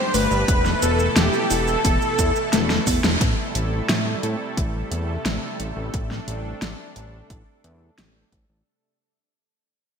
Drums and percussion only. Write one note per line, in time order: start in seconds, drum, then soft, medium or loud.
0.14 open hi-hat medium
0.14 shaker medium
0.31 shaker soft
0.48 kick loud
0.48 closed hi-hat loud
0.48 shaker soft
0.65 snare soft
0.65 shaker soft
0.82 closed hi-hat medium
0.82 shaker medium
0.99 shaker soft
1.16 snare loud
1.16 closed hi-hat loud
1.16 shaker soft
1.33 shaker soft
1.51 open hi-hat medium
1.51 shaker medium
1.68 shaker soft
1.85 kick loud
1.85 closed hi-hat loud
1.85 shaker soft
2.02 shaker soft
2.19 kick medium
2.19 closed hi-hat medium
2.19 shaker medium
2.36 shaker soft
2.53 snare medium
2.53 closed hi-hat loud
2.53 shaker soft
2.70 snare medium
2.70 shaker soft
2.87 kick medium
2.87 open hi-hat medium
2.87 shaker medium
3.04 snare medium
3.04 shaker soft
3.21 kick loud
3.21 closed hi-hat loud
3.55 closed hi-hat medium
3.89 snare loud
3.89 closed hi-hat loud
4.23 closed hi-hat medium
4.57 kick loud
4.57 closed hi-hat loud
4.92 closed hi-hat medium
5.26 snare loud
5.26 closed hi-hat medium
5.60 closed hi-hat medium
5.94 kick loud
5.94 closed hi-hat medium
6.11 snare soft
6.28 closed hi-hat medium
6.62 snare loud
6.62 closed hi-hat medium
6.96 closed hi-hat medium
7.30 kick loud
7.30 closed hi-hat medium
7.64 closed hi-hat medium
7.98 snare loud
7.98 closed hi-hat loud
8.32 kick medium
8.32 closed hi-hat medium